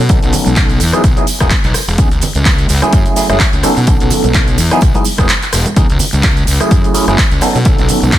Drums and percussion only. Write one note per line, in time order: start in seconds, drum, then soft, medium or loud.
0.09 kick loud
0.09 closed hi-hat medium
0.09 tambourine soft
0.09 cabasa soft
0.23 closed hi-hat soft
0.23 tambourine soft
0.23 cabasa soft
0.33 open hi-hat loud
0.33 tambourine medium
0.33 low conga medium
0.33 cabasa medium
0.46 closed hi-hat soft
0.46 tambourine soft
0.46 high conga medium
0.46 cabasa soft
0.56 kick loud
0.56 clap loud
0.56 closed hi-hat medium
0.56 tambourine medium
0.56 cabasa soft
0.70 closed hi-hat soft
0.70 tambourine soft
0.70 cabasa soft
0.80 open hi-hat loud
0.80 tambourine medium
0.80 cabasa medium
0.93 cross-stick medium
0.93 closed hi-hat soft
0.93 tambourine soft
0.93 cabasa soft
1.04 kick loud
1.04 closed hi-hat medium
1.04 tambourine medium
1.04 cabasa soft
1.17 closed hi-hat soft
1.17 tambourine soft
1.17 cabasa soft
1.27 open hi-hat loud
1.27 tambourine medium
1.27 cabasa medium
1.40 kick medium
1.40 cross-stick medium
1.40 closed hi-hat soft
1.40 tambourine soft
1.40 high conga medium
1.40 cabasa soft
1.50 kick loud
1.50 clap loud
1.50 closed hi-hat medium
1.50 tambourine medium
1.50 cabasa soft
1.64 clap soft
1.64 closed hi-hat soft
1.64 tambourine soft
1.64 cabasa soft
1.74 cross-stick medium
1.74 open hi-hat loud
1.74 tambourine loud
1.74 cabasa medium
1.88 tambourine soft
1.88 cabasa soft
1.98 kick loud
1.98 closed hi-hat loud
1.98 tambourine soft
1.98 cabasa soft
2.11 closed hi-hat soft
2.11 tambourine soft
2.11 cabasa soft
2.22 open hi-hat loud
2.22 tambourine loud
2.22 low conga medium
2.22 cabasa medium
2.35 closed hi-hat soft
2.35 tambourine soft
2.35 high conga medium
2.35 cabasa soft
2.45 kick loud
2.45 clap loud
2.45 closed hi-hat medium
2.45 tambourine medium
2.45 cabasa soft
2.58 closed hi-hat soft
2.58 tambourine soft
2.58 cabasa soft
2.69 open hi-hat loud
2.69 tambourine medium
2.69 cabasa medium
2.82 cross-stick medium
2.82 closed hi-hat soft
2.82 tambourine soft
2.82 cabasa soft
2.93 kick loud
2.93 closed hi-hat loud
2.93 tambourine medium
2.93 cabasa soft
3.06 closed hi-hat soft
3.06 tambourine soft
3.06 cabasa soft
3.16 open hi-hat loud
3.16 tambourine medium
3.16 cabasa medium
3.29 cross-stick medium
3.29 closed hi-hat soft
3.29 tambourine soft
3.29 high conga medium
3.29 cabasa soft
3.40 kick loud
3.40 clap loud
3.40 closed hi-hat loud
3.40 tambourine medium
3.40 cabasa soft
3.53 closed hi-hat soft
3.53 tambourine soft
3.53 cabasa soft
3.63 cross-stick medium
3.63 open hi-hat loud
3.63 tambourine loud
3.63 cabasa medium
3.77 tambourine soft
3.77 cabasa soft
3.87 kick loud
3.87 closed hi-hat loud
3.87 tambourine medium
3.87 cabasa soft
4.00 closed hi-hat soft
4.00 tambourine soft
4.00 cabasa soft
4.10 open hi-hat loud
4.10 tambourine loud
4.10 low conga medium
4.10 cabasa medium
4.24 closed hi-hat soft
4.24 tambourine soft
4.24 high conga medium
4.24 cabasa soft
4.34 kick loud
4.34 clap loud
4.34 closed hi-hat medium
4.34 tambourine medium
4.34 cabasa soft
4.47 closed hi-hat soft
4.47 tambourine soft
4.47 cabasa soft
4.58 open hi-hat loud
4.58 tambourine loud
4.58 cabasa medium
4.71 cross-stick medium
4.71 closed hi-hat soft
4.71 tambourine soft
4.71 cabasa soft
4.81 kick loud
4.81 closed hi-hat loud
4.81 tambourine medium
4.81 cabasa soft
4.94 closed hi-hat soft
4.94 tambourine soft
4.94 high conga medium
4.94 cabasa soft
5.04 open hi-hat loud
5.04 tambourine loud
5.04 cabasa medium
5.18 kick medium
5.18 cross-stick medium
5.18 closed hi-hat soft
5.18 tambourine soft
5.18 high conga medium
5.18 cabasa soft
5.29 clap loud
5.29 closed hi-hat loud
5.29 tambourine medium
5.29 cabasa soft
5.42 clap soft
5.42 closed hi-hat soft
5.42 tambourine soft
5.42 cabasa soft
5.53 cross-stick medium
5.53 open hi-hat loud
5.53 tambourine loud
5.53 cabasa medium
5.65 closed hi-hat soft
5.65 tambourine soft
5.65 high conga medium
5.65 cabasa soft
5.76 kick loud
5.76 closed hi-hat loud
5.76 tambourine medium
5.76 cabasa soft
5.89 closed hi-hat soft
5.89 tambourine soft
5.89 cabasa soft
5.99 open hi-hat loud
5.99 tambourine loud
5.99 low conga medium
5.99 cabasa medium
6.13 closed hi-hat soft
6.13 tambourine soft
6.13 high conga medium
6.13 cabasa soft
6.23 kick loud
6.23 clap loud
6.23 closed hi-hat medium
6.23 tambourine medium
6.23 cabasa soft
6.37 closed hi-hat soft
6.37 tambourine soft
6.37 cabasa soft
6.47 open hi-hat loud
6.47 tambourine medium
6.47 cabasa medium
6.60 cross-stick medium
6.60 closed hi-hat soft
6.60 tambourine soft
6.60 cabasa soft
6.71 kick loud
6.71 closed hi-hat loud
6.71 tambourine medium
6.71 cabasa soft
6.84 closed hi-hat soft
6.84 tambourine soft
6.84 cabasa soft
6.94 open hi-hat loud
6.94 tambourine medium
6.94 cabasa medium
7.07 cross-stick medium
7.07 closed hi-hat soft
7.07 tambourine soft
7.07 high conga medium
7.07 cabasa soft
7.18 kick loud
7.18 clap loud
7.18 closed hi-hat loud
7.18 tambourine medium
7.18 cabasa soft
7.31 closed hi-hat soft
7.31 tambourine soft
7.31 cabasa soft
7.41 cross-stick medium
7.41 open hi-hat loud
7.41 tambourine loud
7.41 cabasa medium
7.55 tambourine soft
7.55 cabasa soft
7.65 kick loud
7.65 closed hi-hat loud
7.65 tambourine soft
7.65 cabasa soft
7.78 closed hi-hat soft
7.78 tambourine soft
7.78 cabasa soft
7.89 open hi-hat loud
7.89 tambourine medium
7.89 low conga medium
7.89 cabasa medium
8.02 closed hi-hat soft
8.02 tambourine soft
8.02 high conga medium
8.02 cabasa soft
8.12 kick loud
8.12 clap loud
8.12 closed hi-hat medium
8.12 cabasa soft